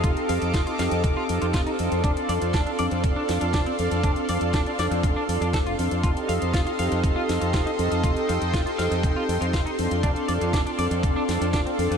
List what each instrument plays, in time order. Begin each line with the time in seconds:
Already playing: analog synth pad A4 D#5 F5
0.03 fingered electric bass F1, analog polysynth C4 D#4 G4 A4, clean electric guitar F4, analog synth pad D6, kick, closed hi-hat
0.17 closed hi-hat
0.29 fingered electric bass F2, clean electric guitar F5, open hi-hat
0.42 fingered electric bass F2, closed hi-hat
0.54 fingered electric bass F1, clean electric guitar F4, kick, snare, closed hi-hat
0.67 clean electric guitar F4, closed hi-hat
0.78 fingered electric bass F2, analog polysynth C4 D#4 G4 A4, clean electric guitar F5, snare, open hi-hat
0.91 fingered electric bass F2, closed hi-hat
1.04 fingered electric bass F1, kick, closed hi-hat
1.17 clean electric guitar F4
1.29 fingered electric bass F2, open hi-hat
1.42 fingered electric bass F2, clean electric guitar F4, closed hi-hat
1.54 fingered electric bass F1, clean electric guitar F4, kick, snare, closed hi-hat
1.66 clean electric guitar D#4, closed hi-hat
1.78 fingered electric bass F2, analog polysynth C4 D4 F4 A4, analog synth pad D5 F5 C6, open hi-hat
1.92 fingered electric bass F2, closed hi-hat
2.03 fingered electric bass F1, analog polysynth C4 D4 F4 A4, clean electric guitar D4, kick, closed hi-hat
2.17 closed hi-hat
2.29 fingered electric bass F2, clean electric guitar D5, open hi-hat
2.42 fingered electric bass F2, closed hi-hat
2.54 fingered electric bass F1, clean electric guitar D4, kick, snare, closed hi-hat
2.66 clean electric guitar D4, closed hi-hat
2.78 fingered electric bass F2, analog polysynth C4 D4 F4 A4, clean electric guitar D5, open hi-hat
2.91 fingered electric bass F2, closed hi-hat
3.04 fingered electric bass F1, kick, closed hi-hat
3.16 clean electric guitar D4
3.29 fingered electric bass F2, snare, open hi-hat
3.41 fingered electric bass F2, clean electric guitar D4, closed hi-hat
3.54 fingered electric bass F1, clean electric guitar D4, kick, snare, closed hi-hat
3.66 clean electric guitar C4, closed hi-hat
3.79 fingered electric bass F2, analog polysynth C4 D4 F4 A4, open hi-hat
3.91 fingered electric bass F2, closed hi-hat
4.03 fingered electric bass F1, analog polysynth C4 D4 F4 A4, clean electric guitar D4, kick, closed hi-hat
4.16 closed hi-hat
4.29 fingered electric bass F2, clean electric guitar D5, open hi-hat
4.41 fingered electric bass F2, closed hi-hat
4.54 fingered electric bass F1, clean electric guitar D4, kick, snare, closed hi-hat
4.66 clean electric guitar D4, closed hi-hat
4.78 fingered electric bass F2, analog polysynth C4 D4 F4 A4, clean electric guitar D5, snare, open hi-hat
4.91 fingered electric bass F2, closed hi-hat
5.03 fingered electric bass F1, kick, closed hi-hat
5.16 clean electric guitar D4
5.29 fingered electric bass F2, open hi-hat
5.41 fingered electric bass F2, clean electric guitar D4, closed hi-hat
5.53 fingered electric bass F1, clean electric guitar A4, kick, snare, closed hi-hat
5.66 clean electric guitar F4, closed hi-hat
5.78 fingered electric bass F2, analog polysynth C4 D4 F4 A4, open hi-hat
5.91 fingered electric bass F2, closed hi-hat
6.03 fingered electric bass F1, analog polysynth C4 D#4 G4 A4, clean electric guitar F4, analog synth pad A4 D#5 F5, kick, closed hi-hat
6.17 closed hi-hat
6.29 fingered electric bass F2, clean electric guitar F5, open hi-hat
6.42 fingered electric bass F2, closed hi-hat
6.54 fingered electric bass F1, clean electric guitar F4, kick, snare, closed hi-hat
6.67 clean electric guitar F4, closed hi-hat
6.78 fingered electric bass F2, analog polysynth C4 D#4 G4 A4, clean electric guitar F5, open hi-hat
6.92 fingered electric bass F2, closed hi-hat
7.04 fingered electric bass F1, kick, closed hi-hat
7.16 clean electric guitar F4
7.29 fingered electric bass F2, snare, open hi-hat
7.41 fingered electric bass F2, clean electric guitar F4, closed hi-hat
7.54 fingered electric bass F1, clean electric guitar F4, kick, snare, closed hi-hat
7.66 clean electric guitar D#4, closed hi-hat
7.78 fingered electric bass F2, analog polysynth C4 D#4 G4 A4, open hi-hat
7.91 fingered electric bass F2, closed hi-hat
8.03 fingered electric bass F1, analog polysynth C4 D#4 G4 A4, clean electric guitar F4, analog synth pad G5, kick, closed hi-hat
8.17 closed hi-hat
8.29 fingered electric bass F2, clean electric guitar F5, open hi-hat
8.42 fingered electric bass F2, closed hi-hat
8.54 fingered electric bass F1, clean electric guitar F4, kick, snare, closed hi-hat
8.66 clean electric guitar F4, closed hi-hat
8.78 fingered electric bass F2, analog polysynth C4 D#4 G4 A4, clean electric guitar F5, snare, open hi-hat
8.91 fingered electric bass F2, closed hi-hat
9.03 fingered electric bass F1, kick, closed hi-hat
9.16 clean electric guitar F4
9.29 fingered electric bass F2, open hi-hat
9.41 fingered electric bass F2, clean electric guitar F4, closed hi-hat
9.53 fingered electric bass F1, clean electric guitar F4, kick, snare, closed hi-hat
9.66 clean electric guitar D#4, closed hi-hat
9.78 fingered electric bass F2, analog polysynth C4 D4 F4 A4, analog synth pad A4 D5 F5, open hi-hat
9.91 fingered electric bass F2, closed hi-hat
10.03 fingered electric bass F1, analog polysynth C4, clean electric guitar D4, kick, closed hi-hat
10.16 closed hi-hat
10.28 fingered electric bass F2, clean electric guitar D5, open hi-hat
10.41 fingered electric bass F2, closed hi-hat
10.53 fingered electric bass F1, clean electric guitar D4, kick, snare, closed hi-hat
10.66 clean electric guitar D4, closed hi-hat
10.77 fingered electric bass F2, analog polysynth C4 D4 F4 A4, clean electric guitar D5, open hi-hat
10.91 fingered electric bass F2, closed hi-hat
11.03 fingered electric bass F1, kick, closed hi-hat
11.16 clean electric guitar D4
11.28 fingered electric bass F2, snare, open hi-hat
11.41 fingered electric bass F2, clean electric guitar D4, closed hi-hat
11.53 fingered electric bass F1, clean electric guitar D4, kick, snare, closed hi-hat
11.66 clean electric guitar C4, closed hi-hat
11.78 fingered electric bass F2, analog polysynth C4 D4 F4 A4, open hi-hat
11.91 fingered electric bass F2, closed hi-hat